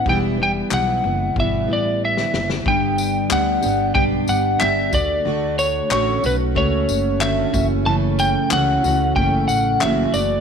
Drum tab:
TB |----------------|--x---x---x---x-|--x---x---x---x-|--x---x---x---x-|
CP |----x-----------|----x-------x---|----x-------x---|----x-------x---|
SD |-------------ooo|----------------|----------------|----------------|
BD |o-------o-------|o-------o-----o-|--------o-----o-|--------o-------|